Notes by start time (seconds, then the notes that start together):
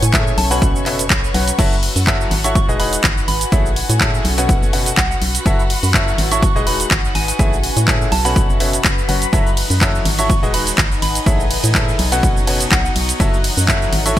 Already playing: C#4 A4 C#5 G#5 C#6
0.00 A2 E5, closed hi-hat, cabasa
0.13 E4 G#4 A4 C#5 E5, kick, clap, closed hi-hat, cabasa
0.27 cabasa
0.38 B1 A5, open hi-hat
0.51 B2 C#4 F#4 B4 C#5 F#5 B5, open hi-hat, cabasa
0.61 B4, kick, closed hi-hat, cabasa
0.75 F#1, cabasa
0.83 B2 C#4 F#4 B4 C#5 E5 B5, clap, open hi-hat
0.93 F#5
0.99 closed hi-hat, cabasa
1.10 B1, kick, clap, closed hi-hat, cabasa
1.24 cabasa
1.34 B1 F#3 C#4 F#4 B4 C#5 F#5, open hi-hat
1.48 closed hi-hat, cabasa
1.59 F#1 F#3 E4 F#4 A4 C#5 E5 F#5, kick, closed hi-hat, crash, cabasa
1.72 C#5, cabasa
1.83 A5, open hi-hat
1.96 F#2, open hi-hat, cabasa
2.07 F#3 E4 F#4 A4 C#5 E5, kick, clap, closed hi-hat, cabasa
2.21 cabasa
2.31 G#1, open hi-hat
2.44 E4 F#4 A4 C#5 E5 C#6, closed hi-hat, cabasa
2.55 D#4 C#6, kick, closed hi-hat, cabasa
2.69 D#1 G#3 D#4 F#4 G#4 B4 D#5, cabasa
2.80 G#3 D#4 F#4 G#4 B4 D#5 B5, open hi-hat
2.90 B4, closed hi-hat, cabasa
2.99 G#5
3.04 G#1, kick, clap, closed hi-hat, cabasa
3.18 cabasa
3.28 G#1 B5, open hi-hat
3.41 closed hi-hat, cabasa
3.52 A1 A3 C#4 E4 G#4 A4 C#5 E5, kick, closed hi-hat, cabasa
3.66 cabasa
3.75 A4, open hi-hat
3.86 A2 E5, closed hi-hat
3.90 cabasa
4.01 E4 G#4 A4 C#5 E5, kick, clap, closed hi-hat, cabasa
4.14 cabasa
4.25 B1, open hi-hat
4.38 B2 C#4 F#4 B4 C#5 F#5, closed hi-hat, cabasa
4.46 B4, kick, closed hi-hat, cabasa
4.62 F#1 F#5, cabasa
4.73 B2 C#4 F#4 B4 C#5 F#5, open hi-hat
4.80 B5
4.86 closed hi-hat, cabasa
4.97 B1 F#5, kick, clap, closed hi-hat, cabasa
5.11 F#5, cabasa
5.22 B1, open hi-hat
5.35 closed hi-hat, cabasa
5.46 F#1 F#3 E4 F#4 A4 C#5 E5, kick, closed hi-hat, cabasa
5.60 C#5, cabasa
5.70 open hi-hat
5.83 F#2, open hi-hat, cabasa
5.94 F#3 E4 F#4 A4 C#5 E5, kick, clap, closed hi-hat, cabasa
6.08 cabasa
6.18 G#1, open hi-hat
6.31 E4 F#4 A4 C#5 E5 C#6, closed hi-hat, cabasa
6.43 D#4 C#6, kick, closed hi-hat, cabasa
6.56 D#1 G#3 D#4 F#4 G#4 B4 D#5, cabasa
6.63 B4 G#5
6.67 G#3 D#4 F#4 G#4 B4 D#5 B5, open hi-hat
6.80 closed hi-hat, cabasa
6.91 G#1, kick, clap, closed hi-hat, cabasa
7.05 cabasa
7.15 G#1 G#5, open hi-hat
7.28 G#5, closed hi-hat, cabasa
7.39 A1 A3 C#4 E4 G#4 A4 C#5 E5, kick, closed hi-hat, cabasa
7.53 cabasa
7.63 open hi-hat
7.73 A2 A4 E5, closed hi-hat
7.77 cabasa
7.88 E4 G#4 A4 C#5 E5, kick, clap, closed hi-hat, cabasa
8.02 cabasa
8.12 B1 A5, open hi-hat
8.25 B2 C#4 F#4 B4 C#5 F#5 B5, open hi-hat, cabasa
8.30 B5
8.36 B4, kick, closed hi-hat, cabasa
8.49 F#1, cabasa
8.60 B2 C#4 F#4 B4 C#5 E5 F#5, open hi-hat
8.73 closed hi-hat, cabasa
8.84 F#1, kick, clap, closed hi-hat, cabasa
8.98 cabasa
9.09 F#1 F#3 C#4 F#4 B4 C#5 F#5, open hi-hat
9.22 closed hi-hat, cabasa
9.33 F#1 E3 F#3 D#4 E4 F#4 A4 C#5 D#5 E5, kick, closed hi-hat, cabasa
9.47 cabasa
9.56 C#5, open hi-hat, ride
9.70 F#2, open hi-hat, cabasa
9.81 F#3 E4 F#4 A4 C#5 E5, kick, clap, closed hi-hat, cabasa
9.95 cabasa
10.05 G#1, open hi-hat, ride
10.19 E4 F#4 A4 C#5 E5 C#6, closed hi-hat, cabasa
10.30 D#4 C#6, kick, closed hi-hat, cabasa
10.43 D#1 G#3 D#4 F#4 G#4 B4 D#5, cabasa
10.52 G#3 D#4 F#4 G#4 B4 D#5 B5, open hi-hat, ride
10.63 G#5, closed hi-hat
10.68 cabasa
10.78 G#1, kick, clap, closed hi-hat, cabasa
10.92 cabasa
11.02 G#1 B5, open hi-hat, ride
11.15 closed hi-hat, cabasa
11.26 A1 E3 A3 E4 G#4 A4 C#5 E5, kick, closed hi-hat, cabasa
11.39 A4, cabasa
11.51 open hi-hat, ride
11.60 A2 C#5, closed hi-hat
11.64 cabasa
11.75 E4 G#4 A4 C#5 E5, kick, clap, closed hi-hat, cabasa
11.89 cabasa
11.99 B1 B3, open hi-hat, ride
12.12 B2 C#4 F#4 B4 C#5 F#5, closed hi-hat, cabasa
12.21 F#4, kick, closed hi-hat, cabasa
12.36 F#1, cabasa
12.47 B2 C#4 F#4 B4 C#5 F#5, open hi-hat, ride
12.54 F#5
12.60 closed hi-hat, cabasa
12.72 B1 F#5, kick, clap, closed hi-hat, cabasa
12.85 F#5, cabasa
12.96 B1, open hi-hat, ride
13.09 closed hi-hat, cabasa
13.20 F#1 E3 F#3 E4 F#4 A4 C#5 E5, kick, closed hi-hat, cabasa
13.34 cabasa
13.44 A4, open hi-hat, ride
13.57 F#2, open hi-hat, cabasa
13.68 F#3 E4 F#4 A4 C#5 E5, kick, clap, closed hi-hat, cabasa
13.82 cabasa
13.93 G#1, open hi-hat, ride
14.06 E4 F#4 A4 C#5 E5 C#6, closed hi-hat, cabasa